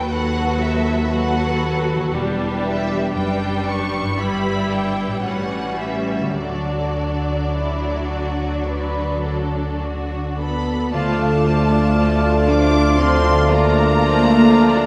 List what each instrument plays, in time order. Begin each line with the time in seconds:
Already playing: double bass section D#2, cello section D#2, harp D#3, violin section A4 B4 G5
0.11 viola section F#3 F#4, violin section A4 B4 F#5
0.62 violin section E5
1.12 viola section F#3 F#4, violin section A4 B4 F#5
1.95 harp E3
2.00 harp G3
2.04 harp D4
2.09 violin section G4 B4, harp B4
2.14 double bass section E1, cello section E2, viola section G3 D4
2.64 violin section E5
3.14 double bass section F#1, cello section F#2, viola section G3 D4, violin section G4 B4 G5
3.67 violin section C#6
4.01 harp G2
4.05 harp G3
4.10 harp E4
4.15 cello section G2, viola section G3 E4, violin section G4, harp B4
4.19 double bass section G1, violin section B4 B5
4.71 violin section G5
5.07 harp A2
5.11 harp G3
5.16 harp C#4
5.20 double bass section A1, harp B4, violin section F#5
5.24 cello section A2, viola section G3 C#4, violin section F#4 B4
5.79 violin section E5
6.21 harp D3
6.25 harp F#3
6.29 harp D4
6.34 harp A4, violin section D5
6.38 double bass section D2, cello section D3, viola section F#3 D4, violin section F#4 A4
7.54 violin section E4
8.12 violin section F#4
8.69 violin section B4
9.25 violin section A4
9.82 violin section F#4
10.38 french horn section B3, cello section B3, violin section A4 B5
10.92 double bass section D2, harp D3, trombone section F3 A3, viola section F3 F4, cello section A3, bassoon A3, french horn section A3, violin section D4 D5 A5, clarinet F4, cor anglais D5, flute section F6
11.19 viola section A3 D4, harp D4, violin section F4 F5
11.45 viola section F3 F4, violin section D4 D5, harp F4
11.71 viola section A3 D4, violin section F4 F5, harp A4
11.97 viola section F3 F4, violin section D4 D5, harp F5
12.22 viola section A3 D4, violin section F4 F5, harp D6
12.48 viola section F3 F4, french horn section D4, cello section D4, violin section D4 D5 D6, harp F5
12.73 viola section A3 D4, violin section F4 F5, harp A4
12.98 harp D3, viola section F3 F4, french horn section C4, cello section C4, violin section D4 D5 C6
13.22 viola section A3 D4, violin section F4 F5
13.47 viola section F3 F4, french horn section A#3, cello section A#3, violin section D4 D5 A#5, harp F4
13.73 viola section A3 D4, violin section F4 F5, harp A4
13.98 viola section F3 F4, violin section D4 D5, harp F5
14.24 viola section A3 D4, violin section F4 F5, harp D6
14.50 viola section F3 F4, violin section D4 D5, harp F5
14.75 viola section A3 D4, violin section F4 F5, harp A4